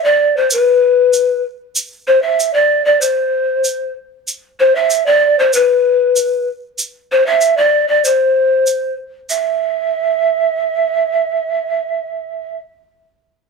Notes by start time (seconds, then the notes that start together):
0.04 D5
0.36 C5
0.50 B4, shaker
1.13 shaker
1.76 shaker
2.07 C5
2.22 E5
2.40 shaker
2.53 D5
2.85 D5
3.01 C5, shaker
3.64 shaker
4.28 shaker
4.59 C5
4.75 E5
4.90 shaker
5.06 D5
5.39 C5
5.53 B4, shaker
6.16 shaker
6.78 shaker
7.12 C5
7.26 E5
7.41 shaker
7.57 D5
7.88 D5
8.05 C5, shaker
8.66 shaker
9.29 E5, shaker